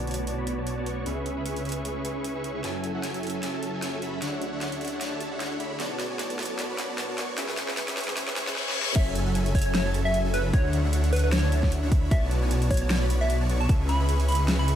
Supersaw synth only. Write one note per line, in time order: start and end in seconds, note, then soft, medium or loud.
0.07 0.16 B3 medium
0.07 0.16 F#4 medium
0.07 0.16 C#5 medium
0.07 0.16 D5 medium
0.07 0.16 A5 loud
0.18 0.25 B3 medium
0.18 0.25 F#4 medium
0.18 0.25 C#5 medium
0.18 0.25 D5 medium
0.18 0.25 A5 medium
0.27 0.35 B3 medium
0.27 0.35 F#4 medium
0.27 0.35 C#5 medium
0.27 0.35 D5 medium
0.27 0.35 A5 loud
0.38 0.55 B3 medium
0.38 0.55 F#4 medium
0.38 0.55 C#5 medium
0.38 0.55 D5 medium
0.38 0.55 B5 loud
0.58 0.75 B3 medium
0.58 0.75 F#4 medium
0.58 0.75 C#5 medium
0.58 0.75 D5 medium
0.58 0.75 A5 medium
0.78 0.84 B3 medium
0.78 0.84 F#4 medium
0.78 0.84 C#5 medium
0.78 0.84 D5 medium
0.78 0.84 A5 loud
0.86 1.04 B3 loud
0.86 1.04 F#4 medium
0.86 1.04 C#5 medium
0.86 1.04 D5 medium
0.86 1.04 C#6 loud
1.06 1.34 C#4 medium
1.06 1.34 G#4 medium
1.06 1.34 B4 medium
1.06 1.34 E5 medium
1.06 1.34 C#6 loud
1.37 1.44 C#4 medium
1.37 1.44 G#4 medium
1.37 1.44 B4 medium
1.37 1.44 E5 medium
1.37 1.44 B5 loud
1.46 1.63 C#4 medium
1.46 1.63 G#4 medium
1.46 1.63 B4 medium
1.46 1.63 E5 medium
1.46 1.63 C#6 loud
1.65 1.74 C#4 medium
1.65 1.74 G#4 medium
1.65 1.74 B4 medium
1.65 1.74 E5 medium
1.65 1.74 C#6 loud
1.76 1.83 C#4 medium
1.76 1.83 G#4 medium
1.76 1.83 B4 medium
1.76 1.83 E5 medium
1.76 1.83 C#6 medium
1.85 1.93 C#4 medium
1.85 1.93 G#4 medium
1.85 1.93 B4 medium
1.85 1.93 E5 medium
1.85 1.93 C#6 loud
1.96 2.03 C#4 medium
1.96 2.03 G#4 medium
1.96 2.03 B4 medium
1.96 2.03 E5 medium
1.96 2.03 C#6 loud
2.05 2.33 C#4 medium
2.05 2.33 G#4 medium
2.05 2.33 B4 medium
2.05 2.33 E5 medium
2.05 2.33 C#6 loud
2.35 2.53 C#4 medium
2.35 2.53 G#4 medium
2.35 2.53 B4 medium
2.35 2.53 E5 medium
2.35 2.53 C#6 loud
2.55 2.62 C#4 medium
2.55 2.62 G#4 medium
2.55 2.62 B4 medium
2.55 2.62 E5 medium
2.55 2.62 C#6 medium
2.64 2.92 F#3 medium
2.64 2.92 C#4 medium
2.64 2.92 A4 medium
2.64 2.92 E5 medium
2.64 2.92 G#5 loud
2.95 3.02 F#3 medium
2.95 3.02 C#4 medium
2.95 3.02 A4 medium
2.95 3.02 E5 medium
2.95 3.02 F#5 loud
3.03 3.21 F#3 medium
3.03 3.21 C#4 medium
3.03 3.21 A4 medium
3.03 3.21 E5 medium
3.03 3.21 G#5 loud
3.23 3.32 F#3 medium
3.23 3.32 C#4 medium
3.23 3.32 A4 medium
3.23 3.32 E5 medium
3.23 3.32 G#5 loud
3.34 3.41 F#3 medium
3.34 3.41 C#4 medium
3.34 3.41 A4 medium
3.34 3.41 E5 medium
3.34 3.41 G#5 medium
3.43 3.51 F#3 medium
3.43 3.51 C#4 medium
3.43 3.51 A4 medium
3.43 3.51 E5 medium
3.43 3.51 G#5 loud
3.54 3.71 F#3 loud
3.54 3.71 C#4 medium
3.54 3.71 A4 medium
3.54 3.71 E5 medium
3.54 3.71 A5 loud
3.74 3.91 F#3 medium
3.74 3.91 C#4 medium
3.74 3.91 A4 medium
3.74 3.91 E5 medium
3.74 3.91 G#5 medium
3.93 4.00 F#3 medium
3.93 4.00 C#4 medium
3.93 4.00 A4 medium
3.93 4.00 E5 medium
3.93 4.00 G#5 loud
4.02 4.19 F#3 loud
4.02 4.19 C#4 medium
4.02 4.19 A4 medium
4.02 4.19 E5 medium
4.02 4.19 B5 loud
4.22 4.50 D3 medium
4.22 4.50 D4 medium
4.22 4.50 C#5 medium
4.22 4.50 E5 medium
4.22 4.50 F#5 loud
4.53 4.60 D3 medium
4.53 4.60 D4 medium
4.53 4.60 C#5 medium
4.53 4.60 E5 medium
4.53 4.60 F#5 loud
4.61 4.79 D3 loud
4.61 4.79 D4 medium
4.61 4.79 C#5 medium
4.61 4.79 E5 medium
4.61 4.79 F#5 loud
4.81 4.89 D3 medium
4.81 4.89 D4 medium
4.81 4.89 C#5 medium
4.81 4.89 E5 medium
4.81 4.89 F#5 loud
4.92 4.99 D3 medium
4.92 4.99 D4 medium
4.92 4.99 C#5 medium
4.92 4.99 E5 medium
4.92 4.99 F#5 medium
5.01 5.09 D3 medium
5.01 5.09 D4 medium
5.01 5.09 C#5 medium
5.01 5.09 E5 medium
5.01 5.09 F#5 loud
5.12 5.29 D3 loud
5.12 5.29 D4 medium
5.12 5.29 C#5 medium
5.12 5.29 E5 medium
5.12 5.29 A5 loud
5.31 5.49 D3 medium
5.31 5.49 D4 medium
5.31 5.49 C#5 medium
5.31 5.49 E5 medium
5.31 5.49 F#5 medium
5.51 5.58 D3 medium
5.51 5.58 D4 medium
5.51 5.58 C#5 medium
5.51 5.58 E5 medium
5.51 5.58 F#5 loud
5.60 5.77 D3 loud
5.60 5.77 D4 medium
5.60 5.77 C#5 medium
5.60 5.77 E5 medium
5.60 5.77 B5 loud
5.80 6.08 B3 medium
5.80 6.08 F#4 medium
5.80 6.08 C#5 medium
5.80 6.08 D5 medium
5.80 6.08 A5 loud
6.10 6.18 B3 medium
6.10 6.18 F#4 medium
6.10 6.18 C#5 medium
6.10 6.18 D5 medium
6.10 6.18 G#5 loud
6.19 6.37 B3 medium
6.19 6.37 F#4 medium
6.19 6.37 C#5 medium
6.19 6.37 D5 medium
6.19 6.37 A5 loud
6.39 6.47 B3 medium
6.39 6.47 F#4 medium
6.39 6.47 C#5 medium
6.39 6.47 D5 medium
6.39 6.47 A5 loud
6.50 6.57 B3 medium
6.50 6.57 F#4 medium
6.50 6.57 C#5 medium
6.50 6.57 D5 medium
6.50 6.57 A5 loud
6.59 6.67 B3 medium
6.59 6.67 F#4 medium
6.59 6.67 C#5 medium
6.59 6.67 D5 medium
6.59 6.67 A5 loud
6.70 6.87 B3 medium
6.70 6.87 F#4 medium
6.70 6.87 C#5 medium
6.70 6.87 D5 medium
6.70 6.87 B5 loud
6.89 7.07 B3 medium
6.89 7.07 F#4 medium
6.89 7.07 C#5 medium
6.89 7.07 D5 medium
6.89 7.07 A5 medium
7.09 7.16 B3 loud
7.09 7.16 F#4 medium
7.09 7.16 C#5 medium
7.09 7.16 D5 medium
7.09 7.16 A5 loud
7.18 7.35 B3 loud
7.18 7.35 F#4 medium
7.18 7.35 C#5 medium
7.18 7.35 D5 medium
7.18 7.35 C#6 loud
7.38 7.66 C#4 medium
7.38 7.66 G#4 medium
7.38 7.66 B4 medium
7.38 7.66 E5 medium
7.38 7.66 C#6 loud
7.68 7.76 C#4 medium
7.68 7.76 G#4 medium
7.68 7.76 B4 medium
7.68 7.76 E5 medium
7.68 7.76 B5 loud
7.77 7.95 C#4 loud
7.77 7.95 G#4 medium
7.77 7.95 B4 medium
7.77 7.95 E5 medium
7.77 7.95 C#6 loud
7.97 8.05 C#4 loud
7.97 8.05 G#4 medium
7.97 8.05 B4 medium
7.97 8.05 E5 medium
7.97 8.05 C#6 loud
8.08 8.15 C#4 medium
8.08 8.15 G#4 medium
8.08 8.15 B4 medium
8.08 8.15 E5 medium
8.08 8.15 C#6 medium
8.17 8.25 C#4 medium
8.17 8.25 G#4 medium
8.17 8.25 B4 medium
8.17 8.25 E5 medium
8.17 8.25 C#6 loud
8.27 8.35 C#4 loud
8.27 8.35 G#4 medium
8.27 8.35 B4 medium
8.27 8.35 E5 medium
8.27 8.35 C#6 loud
8.36 8.64 C#4 medium
8.36 8.64 G#4 medium
8.36 8.64 B4 medium
8.36 8.64 E5 medium
8.36 8.64 C#6 loud
8.67 8.84 C#4 loud
8.67 8.84 G#4 medium
8.67 8.84 B4 medium
8.67 8.84 E5 medium
8.67 8.84 C#6 loud
8.87 8.93 C#4 medium
8.87 8.93 G#4 medium
8.87 8.93 B4 medium
8.87 8.93 E5 medium
8.87 8.93 C#6 medium
8.95 9.24 F#3 medium
8.95 9.24 C#4 medium
8.95 9.24 A4 medium
8.95 9.24 G#5 loud
9.26 9.34 F#3 medium
9.26 9.34 C#4 medium
9.26 9.34 A4 medium
9.26 9.34 E5 medium
9.26 9.34 F#5 loud
9.35 9.53 F#3 medium
9.35 9.53 C#4 medium
9.35 9.53 A4 medium
9.35 9.53 E5 medium
9.35 9.53 G#5 loud
9.55 9.63 C#4 medium
9.55 9.63 A4 medium
9.55 9.63 G#5 loud
9.66 9.72 F#3 medium
9.66 9.72 C#4 medium
9.66 9.72 A4 medium
9.66 9.72 E5 medium
9.66 9.72 G#5 loud
9.74 9.83 F#3 medium
9.74 9.83 C#4 medium
9.74 9.83 A4 medium
9.74 9.83 E5 medium
9.74 9.83 G#5 loud
9.85 10.03 F#3 medium
9.85 10.03 C#4 medium
9.85 10.03 A4 medium
9.85 10.03 E5 medium
9.85 10.03 A5 loud
10.05 10.22 F#3 medium
10.05 10.22 C#4 medium
10.05 10.22 A4 medium
10.05 10.22 E5 medium
10.05 10.22 G#5 medium
10.25 10.32 F#3 medium
10.25 10.32 C#4 medium
10.25 10.32 A4 medium
10.25 10.32 E5 medium
10.25 10.32 G#5 loud
10.34 10.51 F#3 loud
10.34 10.51 C#4 medium
10.34 10.51 A4 loud
10.34 10.51 E5 medium
10.34 10.51 B5 loud
10.53 10.82 D3 medium
10.53 10.82 D4 medium
10.53 10.82 C#5 medium
10.53 10.81 E5 medium
10.53 10.82 F#5 loud
10.84 10.92 D3 medium
10.84 10.92 D4 medium
10.84 10.92 C#5 medium
10.84 10.92 E5 medium
10.84 10.92 F#5 loud
10.93 11.11 D3 loud
10.93 11.11 D4 medium
10.93 11.11 C#5 medium
10.93 11.11 E5 medium
10.93 11.11 F#5 loud
11.13 11.21 D3 medium
11.13 11.21 D4 medium
11.13 11.21 C#5 medium
11.13 11.21 E5 medium
11.13 11.21 F#5 loud
11.23 11.30 D3 medium
11.23 11.30 D4 medium
11.23 11.30 C#5 medium
11.23 11.30 E5 medium
11.23 11.30 F#5 medium
11.32 11.41 D3 medium
11.32 11.41 D4 medium
11.32 11.41 C#5 medium
11.32 11.41 E5 medium
11.32 11.41 F#5 loud
11.43 11.61 D3 medium
11.43 11.60 D4 medium
11.43 11.60 C#5 medium
11.43 11.61 E5 medium
11.43 11.60 A5 loud
11.63 11.80 D3 medium
11.63 11.80 D4 medium
11.63 11.80 C#5 medium
11.63 11.80 E5 medium
11.63 11.80 F#5 medium
11.83 11.90 D3 medium
11.83 11.90 D4 medium
11.83 11.90 C#5 medium
11.83 11.90 E5 medium
11.83 11.90 F#5 loud
11.92 12.09 D3 loud
12.11 12.39 B3 medium
12.11 12.39 F#4 medium
12.11 12.39 C#5 medium
12.11 12.39 D5 medium
12.11 12.39 A5 loud
12.42 12.50 B3 medium
12.42 12.50 F#4 medium
12.42 12.50 C#5 medium
12.42 12.50 D5 medium
12.42 12.50 G#5 loud
12.51 12.69 B3 loud
12.51 12.69 F#4 medium
12.51 12.69 C#5 medium
12.51 12.69 D5 medium
12.51 12.69 A5 loud
12.71 12.79 F#4 medium
12.71 12.79 C#5 medium
12.82 12.88 B3 medium
12.82 12.88 F#4 medium
12.82 12.88 C#5 medium
12.82 12.88 D5 medium
12.82 12.88 A5 loud
12.90 12.99 B3 medium
12.90 12.99 F#4 medium
12.90 12.99 C#5 medium
12.90 12.99 D5 medium
12.90 12.99 A5 loud
13.01 13.18 B3 medium
13.01 13.18 F#4 medium
13.01 13.18 C#5 medium
13.01 13.18 D5 medium
13.01 13.18 B5 loud
13.21 13.38 B3 medium
13.21 13.38 F#4 medium
13.21 13.38 C#5 medium
13.21 13.38 D5 medium
13.21 13.38 A5 medium
13.41 13.47 B3 medium
13.41 13.47 F#4 medium
13.41 13.47 C#5 medium
13.41 13.47 D5 medium
13.41 13.47 A5 loud
13.49 13.67 B3 loud
13.49 13.67 F#4 medium
13.49 13.67 C#5 medium
13.49 13.67 D5 medium
13.49 13.67 C#6 loud
13.69 13.97 C#4 medium
13.69 13.97 G#4 medium
13.69 13.97 B4 medium
13.69 13.97 E5 medium
14.00 14.07 C#4 medium
14.00 14.07 G#4 medium
14.00 14.07 B4 medium
14.00 14.07 E5 medium
14.00 14.07 B5 loud
14.09 14.26 C#4 medium
14.09 14.26 G#4 medium
14.09 14.26 B4 medium
14.09 14.26 E5 medium
14.09 14.26 C#6 loud
14.29 14.37 C#4 loud
14.29 14.37 G#4 medium
14.29 14.37 B4 medium
14.29 14.37 E5 medium
14.29 14.37 C#6 loud
14.39 14.46 C#4 medium
14.39 14.46 G#4 medium
14.39 14.46 B4 medium
14.39 14.46 E5 medium
14.39 14.46 C#6 medium
14.48 14.57 C#4 medium
14.48 14.57 G#4 medium
14.48 14.57 B4 medium
14.48 14.57 E5 medium
14.48 14.57 C#6 loud
14.59 14.66 C#4 medium
14.59 14.66 G#4 medium
14.59 14.66 B4 medium
14.59 14.66 E5 medium
14.59 14.66 C#6 loud
14.68 14.76 C#4 medium
14.68 14.76 G#4 medium
14.68 14.76 B4 medium
14.68 14.76 E5 medium
14.68 14.76 C#6 loud